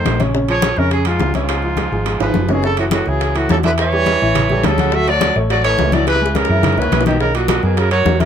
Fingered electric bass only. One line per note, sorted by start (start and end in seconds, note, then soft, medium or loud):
0.05 0.72 A#1 medium
0.77 1.18 F2 medium
1.20 1.87 C#2 medium
1.92 2.19 G#1 medium
2.20 2.34 G#1 medium
2.35 3.01 F#1 medium
3.07 3.47 C#2 medium
3.50 4.16 E2 medium
4.22 4.61 A1 medium
4.65 5.30 D2 medium
5.36 5.75 A1 medium
5.79 6.45 C#2 medium
6.49 6.76 F#2 medium
6.78 6.91 C#2 medium
6.92 7.58 B1 medium
7.63 8.03 F#2 medium
8.06 8.25 E2 medium